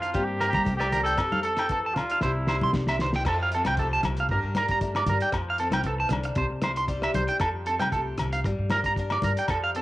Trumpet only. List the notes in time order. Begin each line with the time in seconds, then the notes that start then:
Already playing: F4
0.24 G4
0.49 G4
0.77 G4
1.03 A4
1.42 A4
1.94 F4
2.21 E4